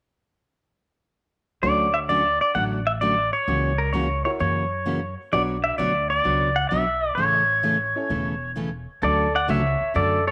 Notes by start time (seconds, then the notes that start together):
1.62 D2 D3 F#3 A3 C#4 D4 F#4 A4 C#5 D5
1.94 E5
2.09 D3 F#3 A3 C#4 F#4 D5
2.41 D5
2.54 A1 D3 F#3 A3 C#4 F#4 F#5
2.87 E5
3.01 D3 F#3 A3 C#4 F#4 D5
3.33 C#5
3.47 C#2 C#3 E3 A#3 C#4 F#4
3.78 A#4
3.93 C#3 E3 A#3 C#4 F#4 C#5
4.25 E4 F#4 A#4 C#5
4.39 F#2 C#3 E3 A#3 C#4 F#4 C#5
4.86 C#3 E3 A#3 C#4 F#4
5.32 B1 B2 F#3 B3 D4 F#4 B4 C#5 D5
5.64 E5
5.78 D2 B2 F#3 B3 D4 F#4 C#5 D5
6.10 D5
6.24 C#2 B2 F#3 B3 D4 F#4 C#5
6.56 F#5
6.69 B1 B2 F#3 B3 D4 F#4 C#5 E5
7.15 A1 C#3 E3 A3 C#4 A4 C#5
7.63 C#3 E3 A3 C#4 A4
7.95 C#4 E4 A4 C#5
8.09 E1 C#3 E3 A3 C#4 A4
8.56 C#3 E3 A3 C#4 A4
9.02 D2 D3 F#3 A3 C#4 F#4 A4 D5
9.35 D5 F#5
9.48 C#2 D3 F#3 A3 C#4 F#4 C#5 E5
9.81 muted upright bass stroke
9.94 F#2 D3 F#3 A3 C#4 F#4 A4 D5
10.27 A4 C#5